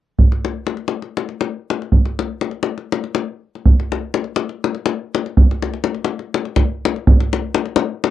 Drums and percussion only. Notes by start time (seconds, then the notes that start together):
0.19 davul low
0.32 davul high
0.45 davul high
0.67 davul high
0.77 davul high
0.88 davul high
1.02 davul high
1.17 davul high
1.29 davul high
1.41 davul high
1.70 davul high
1.82 davul high
1.92 davul low
2.05 davul high
2.19 davul high
2.41 davul high
2.51 davul high
2.63 davul high
2.78 davul high
2.92 davul high
3.04 davul high
3.15 davul high
3.55 davul high
3.66 davul low
3.80 davul high
3.92 davul high
4.14 davul high
4.24 davul high
4.36 davul high
4.49 davul high
4.64 davul high
4.75 davul high
4.86 davul high
5.15 davul high
5.26 davul high
5.37 davul low
5.51 davul high
5.62 davul high
5.74 davul high
5.84 davul high
5.95 davul high
6.05 davul high
6.19 davul high
6.34 davul high
6.45 davul high
6.56 davul high, davul low
6.85 davul high
6.96 davul high
7.07 davul low
7.20 davul high
7.33 davul high
7.55 davul high
7.66 davul high
7.76 davul high
8.04 davul high